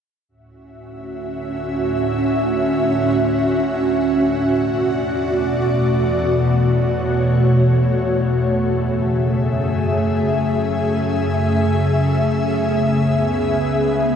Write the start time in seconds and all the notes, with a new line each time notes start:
0.29 D2 A2 C#4 F#4 E5
4.29 E2 B2 A3 D5
6.29 C#5
8.29 F#2 C#3 G#4 E5
12.29 C#2 B3